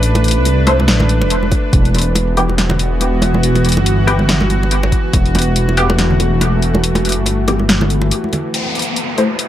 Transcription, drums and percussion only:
0.03 closed hi-hat
0.15 closed hi-hat, muted conga
0.24 closed hi-hat
0.28 closed hi-hat
0.31 closed hi-hat
0.45 closed hi-hat, muted conga
0.67 closed hi-hat, muted conga
0.80 high conga
0.88 snare, closed hi-hat
1.00 muted conga, high conga, low conga
1.09 closed hi-hat
1.22 muted conga
1.30 closed hi-hat
1.43 high conga
1.51 kick, closed hi-hat, muted conga
1.73 kick, closed hi-hat
1.85 closed hi-hat
1.95 closed hi-hat, muted conga
1.99 closed hi-hat
2.02 closed hi-hat
2.15 closed hi-hat, muted conga
2.37 closed hi-hat
2.49 muted conga
2.58 snare, closed hi-hat
2.70 muted conga, low conga
2.79 closed hi-hat
3.01 closed hi-hat, muted conga
3.22 closed hi-hat, muted conga
3.34 high conga
3.43 closed hi-hat
3.56 closed hi-hat, muted conga
3.65 closed hi-hat
3.69 closed hi-hat
3.72 closed hi-hat
3.77 muted conga
3.86 closed hi-hat
4.08 closed hi-hat, muted conga
4.19 high conga
4.29 snare, closed hi-hat, muted conga
4.41 high conga, low conga
4.50 closed hi-hat
4.63 muted conga
4.71 closed hi-hat
4.83 muted conga, high conga
4.92 kick, closed hi-hat
5.13 kick, closed hi-hat, muted conga
5.26 closed hi-hat
5.35 closed hi-hat, muted conga
5.39 closed hi-hat
5.42 closed hi-hat
5.56 closed hi-hat
5.69 muted conga
5.77 closed hi-hat
5.90 muted conga
5.98 snare, closed hi-hat
6.10 low conga
6.20 closed hi-hat, muted conga
6.41 closed hi-hat, muted conga
6.62 closed hi-hat
6.75 muted conga, high conga
6.84 closed hi-hat
6.95 closed hi-hat, muted conga
7.05 closed hi-hat
7.09 closed hi-hat
7.12 closed hi-hat
7.26 closed hi-hat, muted conga
7.48 closed hi-hat, muted conga
7.59 high conga
7.69 snare, closed hi-hat
7.81 muted conga, high conga, low conga
7.90 closed hi-hat
8.01 muted conga
8.11 closed hi-hat
8.24 high conga
8.33 closed hi-hat, muted conga, low conga
8.54 closed hi-hat
8.75 closed hi-hat
8.79 closed hi-hat
8.82 closed hi-hat
8.96 closed hi-hat
9.18 closed hi-hat
9.39 closed hi-hat

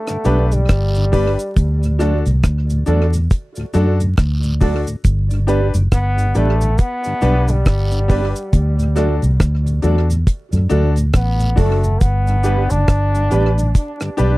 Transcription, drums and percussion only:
0.07 cross-stick, closed hi-hat, cabasa
0.25 closed hi-hat, cabasa
0.52 closed hi-hat, cabasa
0.69 kick, cross-stick, closed hi-hat, cabasa, long guiro
0.95 closed hi-hat, cabasa
1.13 kick, open hi-hat, cabasa
1.39 closed hi-hat, cabasa
1.57 kick, closed hi-hat, cabasa
1.83 closed hi-hat, cabasa
2.00 cross-stick, closed hi-hat, cabasa
2.26 closed hi-hat, cabasa
2.43 kick, cross-stick, closed hi-hat, cabasa
2.70 closed hi-hat, cabasa
2.86 closed hi-hat, cabasa
3.13 closed hi-hat, cabasa
3.31 kick, closed hi-hat, cabasa
3.56 closed hi-hat, cabasa
3.74 closed hi-hat, cabasa
4.00 closed hi-hat, cabasa
4.17 kick, cross-stick, closed hi-hat, cabasa, long guiro
4.43 closed hi-hat, cabasa
4.61 kick, open hi-hat, cabasa
4.87 closed hi-hat, cabasa
5.04 kick, closed hi-hat, cabasa
5.31 closed hi-hat, cabasa
5.48 closed hi-hat, cabasa
5.74 closed hi-hat, cabasa
5.92 kick, cross-stick, closed hi-hat, cabasa
6.18 closed hi-hat, cabasa
6.35 closed hi-hat, cabasa
6.61 closed hi-hat, cabasa
6.78 kick, closed hi-hat, cabasa
7.04 closed hi-hat, cabasa
7.21 closed hi-hat, cabasa
7.48 closed hi-hat, cabasa
7.66 kick, cross-stick, closed hi-hat, cabasa, long guiro
7.92 closed hi-hat, cabasa
8.10 kick, open hi-hat, cabasa
8.36 closed hi-hat, cabasa
8.53 kick, closed hi-hat, cabasa
8.79 closed hi-hat, cabasa
8.96 cross-stick, closed hi-hat, cabasa
9.22 closed hi-hat, cabasa
9.40 kick, cross-stick, closed hi-hat, cabasa
9.67 closed hi-hat, cabasa
9.82 closed hi-hat, cabasa
10.10 closed hi-hat, cabasa
10.27 kick, closed hi-hat, cabasa
10.52 closed hi-hat, cabasa
10.70 closed hi-hat, cabasa
10.96 closed hi-hat, cabasa
11.13 kick, cross-stick, closed hi-hat, cabasa, long guiro
11.40 closed hi-hat, cabasa
11.57 kick, open hi-hat, cabasa
11.84 closed hi-hat, cabasa
12.01 kick, closed hi-hat, cabasa
12.27 closed hi-hat, cabasa
12.44 closed hi-hat, cabasa
12.70 closed hi-hat, cabasa
12.88 kick, cross-stick, closed hi-hat, cabasa
13.15 closed hi-hat, cabasa
13.31 closed hi-hat, cabasa
13.58 closed hi-hat, cabasa
13.75 kick, closed hi-hat, cabasa
14.00 cross-stick, closed hi-hat, cabasa
14.18 closed hi-hat, cabasa

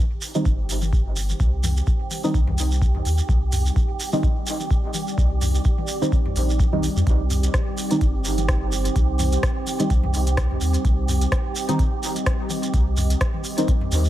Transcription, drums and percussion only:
0.21 open hi-hat, shekere
0.34 shekere
0.45 kick, high tom, shekere
0.69 open hi-hat, shekere
0.81 high tom, shekere
0.93 kick, shekere
1.16 open hi-hat, shekere
1.29 high tom, shekere
1.40 kick, shekere
1.64 mid tom, open hi-hat, high tom, shekere
1.77 shekere
1.87 kick, shekere
2.11 open hi-hat, high tom, shekere
2.24 shekere
2.34 kick, shekere
2.47 mid tom, high tom
2.58 open hi-hat, shekere
2.71 shekere
2.82 kick, shekere
2.95 mid tom, high tom
3.05 open hi-hat, shekere
3.18 shekere
3.29 kick, high tom, shekere
3.52 mid tom, open hi-hat, shekere
3.66 shekere
3.76 kick, high tom, shekere
4.00 open hi-hat, shekere
4.12 high tom, shekere
4.23 kick, shekere
4.47 open hi-hat, shekere
4.60 high tom, shekere
4.71 kick, shekere
4.94 open hi-hat, high tom, shekere
5.07 shekere
5.18 kick, shekere
5.41 mid tom, open hi-hat, high tom, shekere
5.54 shekere
5.64 kick, shekere
5.78 high tom
5.88 open hi-hat, shekere
6.02 shekere
6.12 kick, shekere
6.26 mid tom, high tom
6.36 open hi-hat, shekere
6.49 shekere
6.59 kick, high tom, shekere
6.73 mid tom
6.83 open hi-hat, shekere
6.97 shekere
7.07 kick, closed hi-hat, shekere
7.20 high tom
7.30 mid tom, open hi-hat, shekere
7.43 closed hi-hat, shekere
7.54 kick, cross-stick, closed hi-hat, high tom, shekere
7.78 open hi-hat, shekere
7.91 closed hi-hat, shekere
8.01 kick, closed hi-hat, high tom, shekere
8.25 open hi-hat, shekere
8.38 closed hi-hat, high tom, shekere
8.48 kick, cross-stick, closed hi-hat, shekere
8.72 open hi-hat, shekere
8.85 closed hi-hat, high tom, shekere
8.96 kick, closed hi-hat, shekere
9.19 mid tom, open hi-hat, high tom, shekere
9.32 closed hi-hat, shekere
9.43 kick, cross-stick, closed hi-hat, shekere
9.67 open hi-hat, high tom, shekere
9.79 closed hi-hat, shekere
9.90 kick, closed hi-hat, shekere
10.04 mid tom, high tom
10.14 open hi-hat, shekere
10.27 closed hi-hat, shekere
10.37 kick, cross-stick, closed hi-hat, shekere
10.51 mid tom, high tom
10.61 open hi-hat, shekere
10.74 closed hi-hat, shekere
10.85 kick, closed hi-hat, high tom, shekere
11.08 mid tom, open hi-hat, shekere
11.21 closed hi-hat, shekere
11.32 kick, cross-stick, closed hi-hat, high tom, shekere
11.56 open hi-hat, shekere
11.69 closed hi-hat, high tom, shekere
11.79 kick, closed hi-hat, shekere
12.03 open hi-hat, shekere
12.16 closed hi-hat, high tom, shekere
12.26 kick, cross-stick, closed hi-hat, shekere
12.50 open hi-hat, high tom, shekere
12.63 closed hi-hat, shekere
12.74 kick, closed hi-hat, shekere
12.97 mid tom, open hi-hat, high tom, shekere
13.10 closed hi-hat, shekere
13.21 kick, cross-stick, closed hi-hat, shekere
13.34 high tom
13.44 open hi-hat, shekere
13.58 closed hi-hat, shekere
13.68 kick, closed hi-hat, shekere
13.81 mid tom, high tom
13.92 open hi-hat, shekere
14.04 open hi-hat, shekere

